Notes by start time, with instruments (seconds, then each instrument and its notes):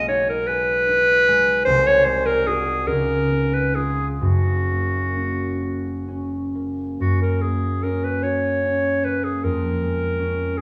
Already playing: harp B1 G#3
0.08 harp D#4, clarinet C#5
0.29 clarinet A#4
0.47 harp G#4, clarinet B4
0.89 harp D#4
1.28 harp G#3
1.65 harp C2, clarinet C5
1.87 clarinet C#5
2.05 harp G#3, clarinet C5
2.26 clarinet A#4
2.47 harp D#4 F#4, clarinet G#4
2.87 harp C#2, clarinet A#4
3.30 harp B3
3.54 clarinet B4
3.75 harp D#4 F4, clarinet G#4
4.21 harp F#1 F#2, clarinet F#4
4.70 harp A#3
5.16 harp C#4
5.62 harp F#4
6.08 harp C#4
6.55 harp A#3
7.00 harp F#2, clarinet F#4
7.22 clarinet A#4
7.42 harp A#3, clarinet G#4
7.83 harp C#4, clarinet A#4
8.04 clarinet B4
8.23 harp F#4, clarinet C#5
8.65 harp C#4
9.04 harp A#3, clarinet B4
9.24 clarinet G#4
9.44 harp F2, clarinet A#4
9.82 harp G#3
10.19 harp C#4
10.57 clarinet G#4, harp G#4